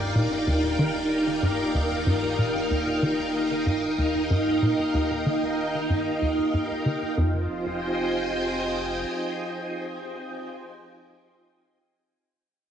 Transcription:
Already playing: D#1 G2 D#4 A#4 D5 F5 G5
0.15 A#2
0.47 D#2
0.79 D#3
1.43 G2
1.75 D#2
2.07 G2
2.39 A#2
2.71 D#2
3.03 D#3
3.10 D#5
3.66 G2
3.98 D#2
4.31 G2
4.63 A#2
4.94 D#2
5.26 D#3
5.90 G2
6.22 D#2
6.54 G2
6.86 D3
7.17 F1 F2 F4
7.27 C5
7.37 D#5
7.46 G5
7.56 G#5

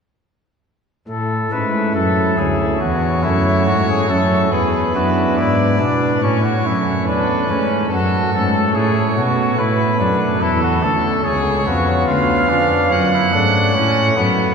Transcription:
1.08 A2 A4
1.52 G#2 A3 C#4 E4 B4
1.94 F#2 A4
2.37 D2 A3 C#4 E4 G#4
2.81 E2 F#4 C#5
3.23 F#2 A3 C#4 E4
3.66 G#2 F#4
3.89 G#4
4.09 F#2 A3 C#4 E4 A4
4.52 E2 G#4 B4
4.95 F#2 B3 D4 E4 F#4
5.37 G#2 E4 D5
5.79 B2 B3 D4 E4
6.21 A2 C#4 C#5
6.43 F#4
6.64 F#2 A3 C#4 E4
7.07 E2 D4 B4
7.49 G#2 A3 C#4
7.91 F#2 F#4 A4
8.33 G#2 A3 C#4 A4
8.75 A2 G#4 C#5
9.16 B2 A3 C#4 F#4
9.58 A2 E4 B4
10.00 F#2 A3 C#4 D4
10.41 E2 E4 A4
10.62 F#4
10.83 D2 A3 C#4 A4
11.24 C#2 G#4 C#5
11.66 F2 B3 C#4 F4 F#4
12.07 D2 F4 F5
12.49 F2 B3 C#4 D4 F4
12.90 F#2 C#4 F#5
13.13 E4
13.33 G#2 A3 C#4 D4
13.75 A2 C#4
14.16 F#2 A3 B3 C#4

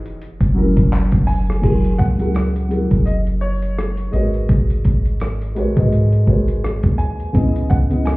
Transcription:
Already playing: E3 D#4 F#4 G#4
0.06 E1, closed hi-hat
0.22 closed hi-hat
0.41 F#1, kick, closed hi-hat
0.55 F#3 C#4 E4 A#4
0.77 F#1, kick, closed hi-hat
0.93 clap, closed hi-hat
1.12 F#1, kick, closed hi-hat
1.27 G#5, open hi-hat
1.50 cross-stick
1.62 F#1 F#3 E4 G#4 A#4, kick, closed hi-hat, crash
1.85 closed hi-hat
1.98 C#2 F#5, kick, closed hi-hat
2.18 F#3 E4 G#4 A#4, closed hi-hat
2.35 cross-stick, closed hi-hat
2.56 closed hi-hat
2.69 F#3 E4 G#4 A#4, closed hi-hat
2.91 F#1, kick, closed hi-hat
3.06 D#5, closed hi-hat
3.27 closed hi-hat
3.41 C#5
3.62 closed hi-hat
3.79 cross-stick, closed hi-hat
3.97 closed hi-hat
4.12 G#1 G#3 F#4 A#4 B4 C#5 D#5, closed hi-hat
4.34 closed hi-hat
4.49 G#1, kick, closed hi-hat
4.70 closed hi-hat
4.85 G#1, kick, closed hi-hat
5.05 closed hi-hat
5.20 cross-stick, closed hi-hat
5.42 closed hi-hat
5.55 A#1 G#3 F#4 A#4 B4 C#5, closed hi-hat
5.75 G#2 G#3 F#4 A#4 B4 D#5, kick, closed hi-hat
5.93 closed hi-hat
6.12 closed hi-hat
6.26 G#1 G#3 F#4 A#4 B4 C#5, kick
6.48 closed hi-hat
6.64 cross-stick, closed hi-hat
6.83 D#2, kick, closed hi-hat
6.98 G#5, closed hi-hat
7.20 closed hi-hat
7.33 C#2 C#3 B3 E4 D#5, kick, closed hi-hat
7.56 closed hi-hat
7.70 C#2 F#5, kick, closed hi-hat
7.89 C#3 B3 E4 D#5, closed hi-hat
8.05 G#5, cross-stick, closed hi-hat

